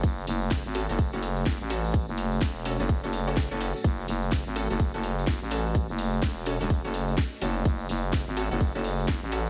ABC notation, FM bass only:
X:1
M:4/4
L:1/16
Q:"Swing 16ths" 1/4=126
K:F#dor
V:1 name="FM bass" clef=bass
F,,,2 F,,,3 G,,,2 F,,,2 F,,,3 F,,, A,,,3- | A,,, F,,,3 E,,,3 F,,,2 F,,,4 F,,,2 z | F,,,2 F,,,3 G,,,2 F,,,2 F,,,3 F,,, A,,,3- | A,,, F,,,3 E,,,3 E,,,2 F,,,3 z2 F,,,2 |
F,,,2 F,,,3 G,,,2 F,,,2 F,,,3 F,,, A,,,3 |]